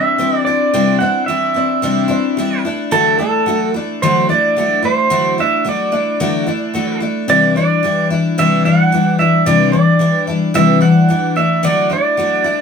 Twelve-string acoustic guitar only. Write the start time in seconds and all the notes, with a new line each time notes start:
Already playing: C4 D4 E4
0.18 G3 C4 D4 E4
0.46 C4 D4 E4
0.73 C3 G3 C4 D4 E4
1.00 C4 D4 E4
1.28 G3 C4 D4 E4
1.54 C4 D4 E4
1.82 C3 G3 C4 D4 E4
2.08 C4 D4 E4
2.37 G3 C4 D4 E4
2.65 A3 D4 E4
2.91 D3 F#3 A3 D4 E4
3.19 A3 D4 E4
3.46 F#3 A3 D4 E4
3.74 A3 D4 E4
4.02 D3 F#3 A3 D4 E4
4.29 A3 D4 E4
4.56 F#3 A3 D4 E4
4.83 A3 D4 E4
5.10 D3 F#3 A3 D4 E4
5.38 A3 D4 E4
5.65 F#3 A3 D4 E4
5.92 A3 D4 E4
6.20 D3 F#3 A3 D4 E4
6.47 A3 D4 E4
6.74 F#3 A3 D4 E4
7.00 A3 D4 E4
7.28 C3 E3 G3 D4 E4
7.56 G3 D4 E4
7.83 E3 G3 D4 E4
8.10 G3 D4 E4
8.38 C3 E3 G3 D4 E4
8.65 G3 D4 E4
8.92 E3 G3 D4 E4
9.19 G3 D4 E4
9.46 C3 E3 G3 D4 E4
9.72 G3 D4 E4
9.99 E3 G3 D4 E4
10.27 G3 D4 E4
10.54 C3 E3 G3 D4 E4
10.81 G3 D4 E4
11.09 E3 G3 D4 E4
11.36 A3 D4 E4
11.63 D3 F#3 A3 D4 E4
11.90 A3 D4 E4
12.17 F#3 A3 D4 E4
12.44 A3 D4 E4